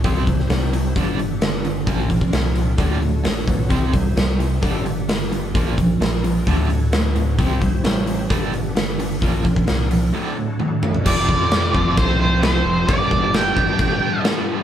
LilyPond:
<<
  \new Staff \with { instrumentName = "Lead electric guitar" } { \time 4/4 \key g \major \tempo 4 = 131 r1 | r1 | r1 | r1 |
r1 | r1 | d''2 c''8 c''8 c''4 | d''4 g''2 r4 | }
  \new Staff \with { instrumentName = "Tonewheel organ" } { \time 4/4 \key g \major \tuplet 3/2 { <cis' f' gis' cis''>8 <c' e' g' c''>4~ } <c' e' g' c''>4 <b d' g' a'>2 | <c' d' f' bes'>2 <d' e' fis' a'>2 | <c' e' g' c''>2 <b d' g' a'>2 | <c' d' f' bes'>2 <d' e' fis' a'>2 |
<c' e' g' c''>2 <b d' g' a'>2 | <c' d' f' bes'>2 <d' e' fis' a'>2 | r1 | r1 | }
  \new Staff \with { instrumentName = "Overdriven electric guitar" } { \clef bass \time 4/4 \key g \major <c g c'>8 <c g>8 <c g>8 <c g>8 <g, d g>8 <g, d>8 <g, d>8 <g, d>8 | <bes, f bes>8 <bes, f>8 <bes, f>8 <bes, f>8 <d, a, d>8 <d, a,>8 <d, a,>8 <d, a,>8 | <c g c'>8 <c g>8 <c g>8 <c g>8 <g, d g>8 <g, d>8 <g, d>8 <g, d>8 | <bes, f bes>8 <bes, f>8 <bes, f>8 <bes, f>8 <d, a, d>8 <d, a,>8 <d, a,>8 <d, a,>8 |
<c g c'>8 <c g>8 <c g>8 <c g>8 <g, d g>8 <g, d>8 <g, d>8 <g, d>8 | <bes, f bes>8 <bes, f>8 <bes, f>8 <bes, f>8 <d, a, d>8 <d, a,>8 <d, a,>8 <d, a,>8 | <f, c f a c' f'>4. <f, c f a c' f'>2~ <f, c f a c' f'>8 | <g, d g b d' g'>4. <g, d g b d' g'>2~ <g, d g b d' g'>8 | }
  \new Staff \with { instrumentName = "Overdriven electric guitar" } { \clef bass \time 4/4 \key g \major <c g c'>8 <c g>8 <c g>8 <c g>8 <g, d g>8 <g, d>8 <g, d>8 <g, d>8 | <bes, f bes>8 <bes, f>8 <bes, f>8 <bes, f>8 <d, a, d>8 <d, a,>8 <d, a,>8 <d, a,>8 | <c g c'>8 <c g>8 <c g>8 <c g>8 <g, d g>8 <g, d>8 <g, d>8 <g, d>8 | <bes, f bes>8 <bes, f>8 <bes, f>8 <bes, f>8 <d, a, d>8 <d, a,>8 <d, a,>8 <d, a,>8 |
<c g c'>8 <c g>8 <c g>8 <c g>8 <g, d g>8 <g, d>8 <g, d>8 <g, d>8 | <bes, f bes>8 <bes, f>8 <bes, f>8 <bes, f>8 <d, a, d>8 <d, a,>8 <d, a,>8 <d, a,>8 | <f, c f>4. <f, c f>4. <f, c f>4 | <g, d g>4. <g, d g>4. <g, d g>4 | }
  \new Staff \with { instrumentName = "Fingered electric bass" } { \clef bass \time 4/4 \key g \major c,4 c,4 g,,2 | bes,,4 c,4 d,4 a,,8 b,,8 | c,4 c,4 g,,2 | bes,,4 bes,,4 d,2 |
c,4 a,,4 g,,2 | bes,,4 c,4 r2 | f,,8 f,4 f,,8 c,4. f,,8 | g,,8 g,,4 g,,8 g,,8 r4. | }
  \new DrumStaff \with { instrumentName = "Drums" } \drummode { \time 4/4 <hho bd>8 <hho bd>16 sn16 <hho sn>8 hho8 <hho bd>8 hho8 <hho sn>8 hho8 | <hho bd>8 <hho bd>16 bd16 <hho sn>8 hho8 <hho bd>8 hho8 <hho sn>8 <hho bd>8 | <hho bd>8 <hho bd>8 <hho sn>8 hho8 <hho bd>8 hho8 <hho sn>8 hho8 | <hho bd>8 <hho bd>8 <hho sn>8 hho8 <hho bd>8 hho8 <hho sn>8 hho8 |
<hho bd>8 <hho bd>8 <hho sn>8 hho8 <hho bd>8 hho8 <hho sn>8 hho8 | <hho bd>8 <hho bd>16 bd16 <hho sn>8 hho8 r4 tommh8 toml16 tomfh16 | <cymc bd>8 bd8 <cymc sn>8 bd8 <cymc bd>4 <cymc sn>4 | <cymc bd>8 bd8 <cymc sn>8 bd8 <cymc bd>4 <cymc sn>4 | }
>>